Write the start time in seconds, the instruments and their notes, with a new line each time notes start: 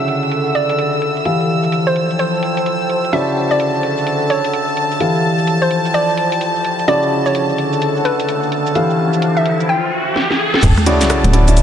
Already playing: grand piano C#3 E4 F#4 D5, ambient pad D3 A4 F#5 A5 E6, violin section E6
0.08 closed hi-hat
0.23 cabasa
0.32 closed hi-hat, cabasa
0.46 cabasa
0.55 synth pluck D5, closed hi-hat
0.70 closed hi-hat, cabasa
0.79 closed hi-hat, cabasa
0.93 cabasa
1.02 closed hi-hat
1.16 cabasa
1.25 grand piano E3 G4 A4 F5, ambient pad F3, closed hi-hat, cabasa
1.38 ambient pad C5 A5, cabasa
1.63 ambient pad G5, cabasa
1.72 closed hi-hat, cabasa
1.87 synth pluck C5, cabasa
1.96 closed hi-hat
2.10 cabasa
2.19 synth pluck C5, closed hi-hat, cabasa
2.34 cabasa
2.43 closed hi-hat
2.57 closed hi-hat, cabasa
2.66 closed hi-hat, cabasa
2.81 cabasa
2.90 closed hi-hat
3.04 cabasa
3.13 grand piano C#3 E4 F#4 D5, ambient pad D3, synth pluck E5, violin section A5, closed hi-hat, cabasa
3.22 ambient pad A4
3.28 cabasa
3.43 ambient pad F#5
3.51 synth pluck D5, cabasa
3.60 closed hi-hat, cabasa
3.68 ambient pad E6
3.74 cabasa
3.83 closed hi-hat
3.98 cabasa
4.07 closed hi-hat, cabasa
4.21 cabasa
4.30 synth pluck C#5, closed hi-hat
4.44 closed hi-hat, cabasa
4.53 closed hi-hat, cabasa
4.68 cabasa
4.77 closed hi-hat
4.91 cabasa
5.00 grand piano E3 G4 A4 F5, ambient pad F3, closed hi-hat, cabasa
5.15 ambient pad C5, cabasa
5.38 ambient pad G5 A5, cabasa
5.47 closed hi-hat, cabasa
5.62 synth pluck C5, cabasa
5.71 closed hi-hat
5.85 cabasa
5.94 synth pluck D5, closed hi-hat, cabasa
6.09 cabasa
6.18 closed hi-hat
6.32 closed hi-hat, cabasa
6.41 closed hi-hat, cabasa
6.56 cabasa
6.65 closed hi-hat
6.79 cabasa
6.88 grand piano C#3 E4 F#4 D5, ambient pad D3, synth pluck D5, closed hi-hat, riser, cabasa
7.03 cabasa
7.14 ambient pad A4
7.26 synth pluck C#5, cabasa
7.34 ambient pad F#5 E6, closed hi-hat, cabasa
7.49 cabasa
7.58 closed hi-hat
7.73 cabasa
7.82 closed hi-hat, cabasa
7.96 cabasa
8.05 synth pluck B4, closed hi-hat
8.20 closed hi-hat, cabasa
8.29 closed hi-hat, cabasa
8.43 cabasa
8.52 closed hi-hat
8.66 cabasa
8.75 grand piano E3 G4 A4 F5, ambient pad F3, closed hi-hat, cabasa
8.84 ambient pad C5
8.90 cabasa
9.13 cabasa
9.22 closed hi-hat, cabasa
9.37 synth pluck E5, cabasa
9.46 closed hi-hat
9.60 cabasa
9.69 synth pluck G5
10.16 snare
10.31 snare
10.54 snare
10.63 analog synth bass D1, violin section A5, kick, closed hi-hat, crash, sub drop, cabasa
10.78 cross-stick, high conga, cabasa
10.86 grand piano C#3 E4 F#4 D5, closed hi-hat
11.01 snare, closed hi-hat, cabasa
11.10 cross-stick, closed hi-hat, cabasa
11.24 analog synth bass D1, closed hi-hat, high conga, cabasa
11.33 grand piano C#4 E4 F#4 D5, closed hi-hat
11.48 grand piano C#4 E4 F#4 D5, closed hi-hat, cabasa
11.57 closed hi-hat, cabasa